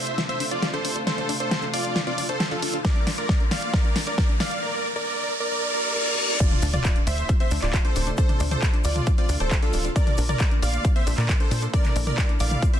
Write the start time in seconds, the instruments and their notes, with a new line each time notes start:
Already playing: string section C3 A3 D4 F4, supersaw synth C5 E5, riser
0.07 closed hi-hat
0.18 synth arpeggio sound F4, snare, closed hi-hat
0.29 synth arpeggio sound C4, supersaw synth C5 E5, closed hi-hat
0.40 synth arpeggio sound D4, open hi-hat
0.51 supersaw synth F4 D5, synth arpeggio sound D5, closed hi-hat
0.62 synth arpeggio sound G4, snare, closed hi-hat
0.73 synth arpeggio sound D4, supersaw synth A4 C5, closed hi-hat
0.85 synth arpeggio sound D4, open hi-hat
0.96 synth arpeggio sound D4, closed hi-hat
1.07 synth arpeggio sound D4, supersaw synth A4 C5, snare, closed hi-hat
1.18 synth arpeggio sound D4, closed hi-hat
1.29 synth arpeggio sound D4, open hi-hat
1.40 supersaw synth A4 C5, synth arpeggio sound D5, closed hi-hat
1.51 synth arpeggio sound G4, snare, closed hi-hat
1.62 synth arpeggio sound D4, closed hi-hat
1.73 supersaw synth F4 D5, synth arpeggio sound D5, open hi-hat
1.85 closed hi-hat
1.96 synth arpeggio sound F4, snare, closed hi-hat
2.07 synth arpeggio sound C4, supersaw synth F4 D5, closed hi-hat
2.18 synth arpeggio sound D4, open hi-hat
2.29 supersaw synth A4 C5, synth arpeggio sound D5, closed hi-hat
2.40 synth arpeggio sound G4, snare, closed hi-hat
2.51 synth arpeggio sound D4, supersaw synth F4 A4, closed hi-hat
2.62 synth arpeggio sound D4, open hi-hat
2.74 synth arpeggio sound D4, closed hi-hat
2.85 string section A#2 F4, synth arpeggio sound D4, supersaw synth A#4 D5, kick, snare, closed hi-hat
2.96 synth arpeggio sound D4, closed hi-hat
3.07 synth arpeggio sound D4, snare, open hi-hat
3.18 supersaw synth A#4 D5, synth arpeggio sound D5, closed hi-hat
3.29 synth arpeggio sound G4, kick, snare, closed hi-hat
3.40 synth arpeggio sound D4, closed hi-hat
3.51 synth arpeggio sound D5, supersaw synth D5 F5, snare, open hi-hat
3.62 closed hi-hat
3.73 synth arpeggio sound D4, supersaw synth A#4 D5, kick, snare, closed hi-hat
3.85 synth arpeggio sound D4, closed hi-hat
3.96 synth arpeggio sound D4, snare, open hi-hat
4.07 supersaw synth A#4 D5, synth arpeggio sound D5, closed hi-hat
4.18 synth arpeggio sound G4, kick, snare, closed hi-hat
4.29 synth arpeggio sound D4, closed hi-hat
4.40 synth arpeggio sound D5, supersaw synth D5 F5, snare, open hi-hat
4.51 closed hi-hat
4.62 supersaw synth A#4 D5
4.96 supersaw synth A#4 D5
5.07 supersaw synth A#4 D5
5.40 supersaw synth A#4 D5
5.51 supersaw synth A#4 D5, reverse cymbal
5.74 supersaw synth A#4 D5
5.96 supersaw synth A#4 D5
6.18 supersaw synth A#4 D5
6.40 string section C3 F4, synth arpeggio sound D4, supersaw synth F4 D5, digital synth lead D5, kick, closed hi-hat, crash, impact, shaker
6.51 synth arpeggio sound D4, closed hi-hat, mid tom
6.62 analog synth bass D2, synth arpeggio sound D4, open hi-hat, shaker
6.73 supersaw synth F4 D5, synth arpeggio sound D5, digital synth lead D5, closed hi-hat, mid tom, shaker
6.85 synth arpeggio sound G4, kick, clap, closed hi-hat, shaker
6.96 synth arpeggio sound D4, closed hi-hat
7.07 analog synth bass D2, supersaw synth C5 E5, synth arpeggio sound D5, digital synth lead E5, open hi-hat, shaker
7.18 closed hi-hat, shaker
7.29 synth arpeggio sound F4, kick, closed hi-hat, shaker
7.40 synth arpeggio sound C4, supersaw synth C5 E5, digital synth lead E5, closed hi-hat
7.51 analog synth bass D2, synth arpeggio sound D4, open hi-hat, shaker
7.62 analog synth bass D1, supersaw synth F4 D5, digital synth lead D5, synth arpeggio sound D5, clap, closed hi-hat, shaker
7.74 synth arpeggio sound G4, kick, clap, closed hi-hat, shaker
7.85 synth arpeggio sound D4, supersaw synth A4 C5, digital synth lead C5, closed hi-hat
7.96 analog synth bass D1, synth arpeggio sound D4, open hi-hat, shaker
8.07 synth arpeggio sound D4, closed hi-hat, shaker
8.17 synth arpeggio sound D4, supersaw synth A4 C5, digital synth lead C5, kick, closed hi-hat, shaker
8.29 synth arpeggio sound D4, closed hi-hat, mid tom
8.40 analog synth bass D2, synth arpeggio sound D4, open hi-hat, shaker
8.51 supersaw synth A4 C5, digital synth lead C5, synth arpeggio sound D5, closed hi-hat, mid tom, shaker
8.62 synth arpeggio sound G4, kick, clap, closed hi-hat, shaker
8.74 synth arpeggio sound D4, closed hi-hat
8.84 analog synth bass D2, supersaw synth F4 D5, digital synth lead D5, synth arpeggio sound D5, open hi-hat, shaker
8.96 closed hi-hat, mid tom, shaker
9.07 synth arpeggio sound F4, kick, closed hi-hat, shaker
9.18 synth arpeggio sound C4, supersaw synth F4 D5, digital synth lead D5, closed hi-hat
9.29 analog synth bass D2, synth arpeggio sound D4, open hi-hat, shaker
9.40 analog synth bass D1, supersaw synth A4 C5, digital synth lead C5, synth arpeggio sound D5, closed hi-hat, shaker
9.51 synth arpeggio sound G4, kick, clap, closed hi-hat, shaker
9.62 synth arpeggio sound D4, supersaw synth F4 A4, digital synth lead A4, closed hi-hat
9.73 analog synth bass D1, synth arpeggio sound D4, open hi-hat, shaker
9.85 synth arpeggio sound D4, closed hi-hat, shaker
9.96 string section D3 A3 A#3, synth arpeggio sound D4, supersaw synth A#4 D5, digital synth lead D5, kick, closed hi-hat, shaker
10.07 synth arpeggio sound D4, closed hi-hat, mid tom
10.17 analog synth bass A#1, synth arpeggio sound D4, open hi-hat, shaker
10.29 supersaw synth A#4 D5, digital synth lead D5, synth arpeggio sound D5, closed hi-hat, mid tom, shaker
10.39 synth arpeggio sound G4, kick, clap, closed hi-hat, shaker
10.51 synth arpeggio sound D4, closed hi-hat
10.62 analog synth bass A#1, supersaw synth D5 F5, synth arpeggio sound D5, digital synth lead F5, open hi-hat, shaker
10.73 closed hi-hat, shaker
10.85 synth arpeggio sound F4, kick, closed hi-hat, shaker
10.96 synth arpeggio sound C4, supersaw synth C5 E5, digital synth lead E5, closed hi-hat
11.07 analog synth bass A#1, synth arpeggio sound D4, open hi-hat, shaker
11.18 analog synth bass A#2, supersaw synth A#4 D5, digital synth lead D5, synth arpeggio sound D5, clap, closed hi-hat, shaker
11.29 synth arpeggio sound G4, kick, clap, closed hi-hat, shaker
11.40 synth arpeggio sound D4, supersaw synth A4 C5, digital synth lead C5, closed hi-hat
11.51 analog synth bass A#2, synth arpeggio sound D4, open hi-hat, shaker
11.62 synth arpeggio sound D4, closed hi-hat, shaker
11.73 synth arpeggio sound D4, string section E4, supersaw synth A#4 D5, digital synth lead D5, kick, closed hi-hat, shaker
11.84 synth arpeggio sound D4, clap, closed hi-hat, mid tom, shaker
11.96 analog synth bass A#1, synth arpeggio sound D4, open hi-hat, shaker
12.06 supersaw synth A#4 D5, synth arpeggio sound D5, digital synth lead D5, closed hi-hat, mid tom, shaker
12.18 synth arpeggio sound G4, kick, clap, closed hi-hat, shaker
12.29 synth arpeggio sound D4, closed hi-hat
12.40 analog synth bass A#1, synth arpeggio sound D5, supersaw synth D5 F5, digital synth lead F5, open hi-hat, shaker
12.51 closed hi-hat, mid tom, shaker
12.62 synth arpeggio sound F4, kick, closed hi-hat, shaker
12.73 synth arpeggio sound C4, supersaw synth C5 E5, digital synth lead E5, closed hi-hat